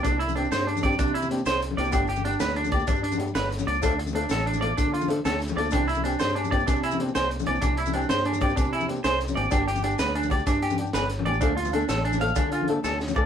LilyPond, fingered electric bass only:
\new Staff \with { instrumentName = "Fingered electric bass" } { \clef bass \time 12/8 \key c \major \tempo 4. = 127 c,4. g,4. c4. c,4 c,8 | g,,4. d,4. g,4. g,,4 des,8 | d,4. a,,4. d4. d,4 d,8 | c,4. g,4. c4. c,4 c,8 |
c,4. g,4. c4. c,4 aes,,8 | g,,4. d,4. g,4. g,,4 a,,8 | d,4. a,,4. d4. d,4 d,8 | }